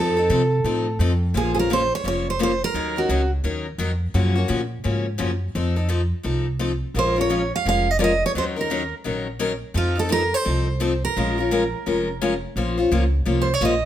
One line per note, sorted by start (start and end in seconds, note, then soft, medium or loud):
0.00 0.29 F2 medium
0.00 0.16 F3 medium
0.00 0.16 C4 medium
0.00 0.16 D#4 medium
0.00 0.16 A4 medium
0.00 0.97 A4 medium
0.17 0.29 C4 soft
0.17 0.30 D#4 medium
0.17 0.29 A4 medium
0.30 0.64 C3 medium
0.30 0.41 F3 medium
0.30 0.41 C4 medium
0.30 0.42 D#4 medium
0.30 0.42 A4 medium
0.64 0.98 A2 medium
0.64 0.86 F3 medium
0.64 0.86 C4 medium
0.64 0.86 D#4 medium
0.64 0.86 A4 medium
0.99 1.33 F2 medium
0.99 1.11 F3 medium
0.99 1.11 C4 medium
0.99 1.11 D#4 medium
0.99 1.12 A4 medium
1.34 1.90 A#1 medium
1.34 1.55 F3 medium
1.34 1.55 A#3 medium
1.34 1.56 C#4 medium
1.34 1.55 F4 medium
1.34 1.51 G#4 medium
1.34 1.54 C5 medium
1.55 1.70 C#4 soft
1.55 1.69 F4 soft
1.55 1.58 G#4 medium
1.55 1.69 C5 medium
1.59 1.72 A#4 medium
1.70 1.81 F3 medium
1.70 1.81 A#3 medium
1.70 1.81 C#4 medium
1.70 1.81 F4 medium
1.70 1.81 C5 medium
1.70 1.94 C5 medium
1.95 2.06 C#5 medium
2.04 2.60 F1 medium
2.04 2.25 F3 medium
2.04 2.26 A#3 medium
2.04 2.26 C#4 medium
2.04 2.26 F4 medium
2.04 2.26 C5 medium
2.04 2.28 C#5 medium
2.30 2.41 C5 medium
2.39 2.51 F3 medium
2.39 2.51 A#3 medium
2.39 2.51 C#4 medium
2.39 2.51 F4 medium
2.39 2.51 C5 medium
2.43 2.64 C5 medium
2.64 2.99 A#4 medium
2.74 3.02 D#2 medium
2.74 2.95 D#3 medium
2.74 2.96 F#3 medium
2.74 2.96 C#4 medium
2.74 2.96 D#4 medium
2.74 2.95 A#4 medium
2.96 3.09 C#4 soft
2.96 3.09 D#4 soft
2.96 3.30 F#4 medium
2.96 3.09 A#4 medium
3.09 3.39 C#2 medium
3.09 3.21 D#3 medium
3.09 3.21 F#3 medium
3.09 3.21 C#4 medium
3.09 3.21 D#4 medium
3.09 3.21 A#4 medium
3.44 3.74 D#2 medium
3.44 3.65 D#3 medium
3.44 3.65 F#3 medium
3.44 3.65 C#4 medium
3.44 3.66 D#4 medium
3.44 3.66 A#4 medium
3.78 4.09 F2 medium
3.78 3.90 D#3 medium
3.78 3.91 F#3 medium
3.78 3.91 C#4 medium
3.78 3.91 D#4 medium
3.78 3.91 A#4 medium
4.14 4.42 F#2 medium
4.14 4.35 C#3 medium
4.14 4.35 F3 medium
4.14 4.35 A#3 medium
4.14 4.36 C#4 medium
4.14 4.34 F#4 medium
4.36 4.48 A#3 soft
4.36 4.48 C#4 soft
4.36 4.48 F#4 medium
4.48 4.79 A#2 medium
4.48 4.60 C#3 medium
4.48 4.60 F3 medium
4.48 4.60 A#3 medium
4.48 4.60 C#4 medium
4.48 4.61 F#4 medium
4.84 5.15 G#2 medium
4.84 5.05 C#3 medium
4.84 5.05 F3 medium
4.84 5.05 A#3 medium
4.84 5.05 C#4 medium
4.84 5.06 F#4 medium
5.18 5.50 F#2 medium
5.18 5.30 C#3 medium
5.18 5.30 F3 medium
5.18 5.30 A#3 medium
5.18 5.31 C#4 medium
5.18 5.31 F#4 medium
5.55 6.11 F2 medium
5.55 5.76 F3 medium
5.55 5.76 C4 medium
5.55 5.76 D#4 medium
5.55 5.75 A4 medium
5.76 5.88 C4 soft
5.76 5.88 D#4 soft
5.76 5.88 A4 medium
5.89 6.00 F3 medium
5.89 6.00 C4 medium
5.89 6.01 D#4 medium
5.89 6.01 A4 medium
6.23 6.81 C2 medium
6.23 6.45 F3 medium
6.23 6.45 C4 medium
6.23 6.46 D#4 medium
6.23 6.46 A4 medium
6.59 6.71 F3 medium
6.59 6.71 C4 medium
6.59 6.71 D#4 medium
6.59 6.71 A4 medium
6.94 7.51 A#1 medium
6.94 7.16 F3 medium
6.94 7.16 G#3 medium
6.94 7.16 C#4 medium
6.94 7.16 F4 medium
6.94 7.15 A#4 medium
6.99 7.17 C5 medium
7.16 7.29 C#4 soft
7.16 7.29 F4 soft
7.16 7.29 A#4 soft
7.21 7.51 C#5 medium
7.29 7.41 F3 medium
7.29 7.41 G#3 medium
7.29 7.41 C#4 medium
7.29 7.41 F4 medium
7.29 7.42 A#4 medium
7.56 7.66 F5 medium
7.65 8.21 F1 medium
7.65 7.86 F3 medium
7.65 7.87 G#3 medium
7.65 7.87 C#4 medium
7.65 7.87 F4 medium
7.65 7.87 A#4 medium
7.65 7.91 F5 medium
7.91 7.99 D#5 medium
7.99 8.11 F3 medium
7.99 8.11 G#3 medium
7.99 8.11 C#4 medium
7.99 8.11 F4 medium
7.99 8.11 A#4 medium
7.99 8.01 D5 medium
8.04 8.24 D#5 medium
8.26 8.31 C#5 medium
8.35 8.91 D#2 medium
8.35 8.56 D#3 medium
8.35 8.56 F#3 medium
8.35 8.57 C#4 medium
8.35 8.57 D#4 medium
8.35 8.55 A#4 medium
8.35 8.44 C5 medium
8.56 8.70 C#4 soft
8.56 8.70 D#4 medium
8.56 8.69 A#4 medium
8.61 8.94 A#4 medium
8.70 8.81 D#3 medium
8.70 8.82 F#3 medium
8.70 8.82 C#4 medium
8.70 8.82 D#4 medium
8.70 8.82 A#4 medium
9.04 9.62 A#1 medium
9.04 9.26 D#3 medium
9.04 9.26 F#3 medium
9.04 9.26 C#4 medium
9.04 9.26 D#4 medium
9.04 9.27 A#4 medium
9.39 9.51 D#3 medium
9.39 9.51 F#3 medium
9.39 9.51 C#4 medium
9.39 9.52 D#4 medium
9.39 9.52 A#4 medium
9.74 10.31 F2 medium
9.74 9.96 F3 medium
9.74 9.96 C4 medium
9.74 9.96 D#4 medium
9.74 9.97 F4 medium
9.74 9.94 A4 medium
9.96 10.08 C4 soft
9.96 10.09 D#4 soft
9.96 10.09 A4 soft
9.96 10.11 A4 medium
10.09 10.21 F3 medium
10.09 10.21 C4 medium
10.09 10.21 D#4 medium
10.09 10.22 A4 medium
10.09 10.34 A#4 medium
10.34 11.04 C5 loud
10.45 11.02 C2 medium
10.45 10.66 F3 medium
10.45 10.67 C4 medium
10.45 10.67 D#4 medium
10.45 10.67 A4 medium
10.80 10.92 F3 medium
10.80 10.92 C4 medium
10.80 10.92 D#4 medium
10.80 10.92 A4 medium
11.05 12.40 A#4 medium
11.16 11.73 A#1 medium
11.16 11.37 F3 medium
11.16 11.37 G#3 medium
11.16 11.38 C#4 medium
11.16 11.38 F4 medium
11.16 11.37 A#4 medium
11.38 11.51 C#4 soft
11.38 11.51 F4 medium
11.38 11.51 A#4 medium
11.51 11.62 F3 medium
11.51 11.62 G#3 medium
11.51 11.63 C#4 medium
11.51 11.63 F4 medium
11.51 11.63 A#4 medium
11.86 12.43 F1 medium
11.86 12.07 F3 medium
11.86 12.08 G#3 medium
11.86 12.07 C#4 medium
11.86 12.08 F4 medium
11.86 12.08 A#4 medium
12.21 12.33 F3 medium
12.21 12.33 G#3 medium
12.21 12.33 C#4 medium
12.21 12.33 F4 medium
12.21 12.33 A#4 medium
12.56 12.90 A#1 medium
12.56 12.77 F3 medium
12.56 12.78 A#3 medium
12.56 12.78 C#4 medium
12.56 12.77 F4 medium
12.56 12.76 C5 medium
12.78 12.91 C#4 soft
12.78 12.91 F4 soft
12.78 12.91 C5 medium
12.92 13.26 C#2 medium
12.92 13.03 F3 medium
12.92 13.03 A#3 medium
12.92 13.03 C#4 medium
12.92 13.03 F4 medium
12.92 13.03 C5 medium
13.26 13.60 C2 medium
13.26 13.47 F3 medium
13.26 13.48 A#3 medium
13.26 13.48 C#4 medium
13.26 13.48 F4 medium
13.26 13.48 C5 medium
13.42 13.54 C5 medium
13.54 13.63 C#5 medium
13.61 13.85 A#1 medium
13.61 13.73 F3 medium
13.61 13.73 A#3 medium
13.61 13.73 C#4 medium
13.61 13.73 F4 medium
13.61 13.73 C5 medium
13.65 13.85 D#5 medium